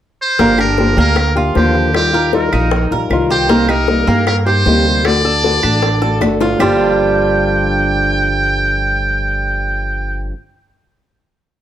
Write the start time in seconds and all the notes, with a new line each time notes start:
0.22 C5
0.39 G1 D3 F3 A#3 D4 G4, high bongo
0.58 A#3 D4 G4 A#4, high bongo, claves
0.77 D3 F3 A#3 D4 G4, high bongo
0.97 D2 A#3 D4 G4 A#4, high bongo
1.16 muted nylon-string guitar stroke, high bongo, claves
1.35 A#3 D4 F4 G4
1.55 D#2 D3 F3 A#3 D4 G4, high bongo, low bongo
1.75 high bongo
1.93 D#3 G3 D#4 F4 G4, high bongo, claves
2.13 G3 D#4 F4 A#4, high bongo
2.32 D#3 G3 D#4 F4 A#4, high bongo
2.52 A#1 G3 D#4 F4, high bongo, claves
2.71 muted nylon-string guitar stroke, high bongo
2.91 A#1 G3 D#4 F4 A#4
3.10 C2 D#3 G3 D#4 F4, high bongo, low bongo, claves
3.30 G4 C5, high bongo
3.49 C3 G3 A#3 D#4 G4, high bongo
3.68 A#3 D#4 G4 A#4, high bongo, claves
3.88 C3 G3 A#3 D#4 G4, high bongo
4.07 G2 A#3 D#4 G4, high bongo
4.27 A#4, muted nylon-string guitar stroke, high bongo, claves
4.46 A#3 D#4 G4 C5
4.66 D2 C3 G3 A#3 D#4 G4, high bongo, low bongo
4.85 high bongo
5.05 D3 A3 D4 F#4 D5, high bongo, claves
5.24 A3 D4 F#4 A4, high bongo
5.44 D3 A3 D4 F#4, high bongo
5.63 A1 A3 D4 F#4, high bongo, claves
5.82 muted nylon-string guitar stroke, high bongo
6.01 A3 D4 F#4 A4, high bongo
6.20 G1 D3 A3 D4 F#4, high bongo, claves
6.41 F4, low bongo
6.59 G1 G2 D3 F3 G3 A#3 D4 F4 G4 G5, low bongo, claves